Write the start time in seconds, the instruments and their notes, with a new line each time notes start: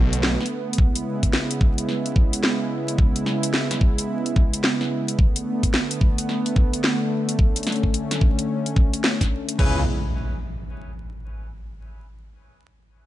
Already playing: detuned saw bass B1, analog synth pad D3 A3 B3
0.13 closed hi-hat
0.23 snare
0.40 snare
0.46 closed hi-hat
0.73 closed hi-hat
0.78 analog synth pad C#3 G#3 E4, kick
0.95 closed hi-hat
1.23 kick, closed hi-hat
1.33 snare
1.51 closed hi-hat
1.61 kick
1.78 closed hi-hat
1.89 snare
2.06 closed hi-hat
2.16 kick
2.33 closed hi-hat
2.44 snare
2.88 closed hi-hat
2.98 kick
3.16 closed hi-hat
3.26 snare
3.43 closed hi-hat
3.54 snare
3.71 snare, closed hi-hat
3.81 kick
3.98 closed hi-hat
4.26 closed hi-hat
4.36 kick
4.54 closed hi-hat
4.64 snare
4.81 snare
5.08 closed hi-hat
5.19 analog synth pad D3 A3 B3, kick
5.36 closed hi-hat
5.63 kick, closed hi-hat
5.74 snare
5.91 closed hi-hat
6.01 kick
6.18 closed hi-hat
6.29 snare
6.46 closed hi-hat
6.56 kick
6.74 closed hi-hat
6.84 snare
7.29 closed hi-hat
7.39 analog synth pad C#4, kick
7.56 closed hi-hat
7.63 snare, closed hi-hat
7.67 closed hi-hat
7.72 closed hi-hat
7.76 closed hi-hat
7.83 kick
7.94 closed hi-hat
8.11 snare, closed hi-hat
8.21 kick
8.39 closed hi-hat
8.66 closed hi-hat
8.76 kick
8.94 closed hi-hat
9.04 snare
9.21 kick, snare, closed hi-hat
9.49 closed hi-hat
9.59 detuned saw bass C#2, analog synth pad C#3 G#3 B3 E4, horn section C#4 E4 G#4 B4, kick, crash, impact